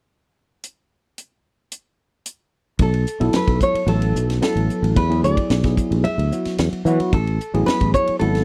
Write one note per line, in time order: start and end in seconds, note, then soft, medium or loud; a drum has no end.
0.64 closed hi-hat soft
1.18 closed hi-hat soft
1.72 closed hi-hat soft
2.26 closed hi-hat soft
2.79 3.04 B1 medium
2.79 3.31 A4 medium
2.79 kick loud
2.79 ride medium
2.94 ride medium
3.07 hi-hat pedal medium
3.20 3.33 B1 medium
3.20 3.82 F#3 medium
3.20 3.82 B3 medium
3.20 3.82 E4 medium
3.20 3.82 A4 medium
3.20 ride medium
3.33 3.62 B4 medium
3.33 muted fretless electric bass stroke soft
3.33 snare medium
3.33 ride medium
3.48 3.60 B1 medium
3.48 kick medium
3.48 ride medium
3.60 3.90 C#5 medium
3.60 kick medium
3.60 hi-hat pedal medium
3.75 muted fretless electric bass stroke soft
3.75 ride medium
3.87 4.12 A1 medium
3.87 4.37 F#3 medium
3.87 4.37 B3 medium
3.87 4.38 E4 medium
3.87 4.38 A4 medium
3.87 4.41 A4 medium
3.87 ride medium
4.02 ride medium
4.15 4.39 B1 medium
4.15 hi-hat pedal medium
4.30 snare soft
4.30 ride medium
4.41 4.96 F#3 medium
4.41 4.96 B3 medium
4.41 4.96 E4 medium
4.41 4.98 A4 medium
4.41 4.97 A4 medium
4.41 snare medium
4.41 ride medium
4.56 4.68 A1 medium
4.56 ride medium
4.70 hi-hat pedal medium
4.83 4.95 A1 medium
4.83 ride medium
4.96 5.21 E2 medium
4.96 5.24 B4 medium
4.96 kick medium
4.96 ride medium
5.09 5.58 F#3 medium
5.09 5.59 B3 medium
5.09 5.59 E4 medium
5.09 5.59 G#4 medium
5.09 ride medium
5.23 5.36 D2 medium
5.23 6.04 D5 medium
5.23 hi-hat pedal medium
5.37 kick medium
5.37 ride medium
5.50 5.75 B1 medium
5.50 snare medium
5.50 ride medium
5.63 6.25 F#3 medium
5.63 6.26 B3 medium
5.63 6.26 E4 medium
5.63 6.26 G#4 medium
5.63 kick medium
5.63 snare soft
5.63 ride soft
5.77 muted fretless electric bass stroke soft
5.77 kick medium
5.77 hi-hat pedal medium
5.91 6.03 B1 medium
5.91 ride medium
6.04 6.55 E5 medium
6.04 ride medium
6.18 6.30 D2 medium
6.18 ride medium
6.32 6.81 F#3 medium
6.32 6.81 B3 medium
6.32 6.81 E4 medium
6.32 6.82 F#4 medium
6.32 hi-hat pedal medium
6.45 muted fretless electric bass stroke soft
6.45 snare soft
6.45 ride medium
6.58 6.71 E2 medium
6.58 snare medium
6.58 ride medium
6.73 muted fretless electric bass stroke soft
6.73 ride medium
6.85 6.98 E3 medium
6.85 7.13 F#3 medium
6.85 7.13 B3 medium
6.85 7.13 E4 medium
6.85 7.14 F#4 medium
6.85 hi-hat pedal medium
7.00 muted fretless electric bass stroke soft
7.00 ride medium
7.13 7.37 A1 medium
7.13 7.66 A4 medium
7.13 kick medium
7.13 ride medium
7.27 ride soft
7.40 hi-hat pedal medium
7.54 7.66 A1 medium
7.54 8.15 F#3 medium
7.54 8.15 B3 medium
7.54 8.15 E4 medium
7.54 8.16 G#4 medium
7.54 ride medium
7.66 7.92 B4 medium
7.66 muted fretless electric bass stroke soft
7.66 snare medium
7.66 ride medium
7.81 7.93 A1 medium
7.81 kick medium
7.81 ride medium
7.94 8.19 C#5 medium
7.94 kick medium
7.94 hi-hat pedal medium
8.07 muted fretless electric bass stroke soft
8.07 ride medium
8.19 8.44 G#1 medium
8.19 8.44 F#3 medium
8.19 8.44 B3 medium
8.19 8.44 E4 medium
8.19 8.44 A4 medium
8.19 ride medium
8.35 snare soft
8.35 ride medium